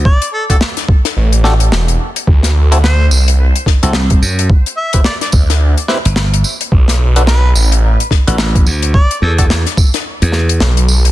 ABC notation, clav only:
X:1
M:4/4
L:1/16
Q:"Swing 16ths" 1/4=108
K:Em
V:1 name="Clav"
z3 [DFGA] z6 [DFGA] z4 z | z3 [CEFA] z6 z [CEFA] z4 | z3 [CEGB] z6 [CEGB] z4 z | z3 [DFAB] z6 z [DFAB] z4 |
z3 [DFGA] z12 |]